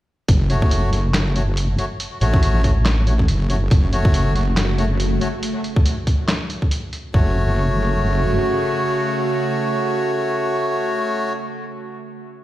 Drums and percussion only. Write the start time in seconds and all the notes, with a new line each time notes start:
0.28 kick, closed hi-hat
0.50 closed hi-hat
0.62 kick
0.71 closed hi-hat
0.93 closed hi-hat
1.14 snare, clap, closed hi-hat
1.36 closed hi-hat
1.57 closed hi-hat
1.79 closed hi-hat
2.00 closed hi-hat
2.21 closed hi-hat
2.34 kick
2.43 closed hi-hat
2.64 kick, closed hi-hat
2.85 snare, clap, closed hi-hat
3.07 closed hi-hat
3.19 kick
3.28 closed hi-hat
3.50 closed hi-hat
3.71 kick, closed hi-hat
3.93 closed hi-hat
4.05 kick
4.14 closed hi-hat
4.36 closed hi-hat
4.57 snare, clap, closed hi-hat
4.78 closed hi-hat
5.00 closed hi-hat
5.21 closed hi-hat
5.43 closed hi-hat
5.64 closed hi-hat
5.76 kick
5.86 closed hi-hat
6.07 kick, closed hi-hat
6.28 snare, clap, closed hi-hat
6.50 closed hi-hat
6.62 kick
6.71 closed hi-hat
6.93 closed hi-hat
7.14 kick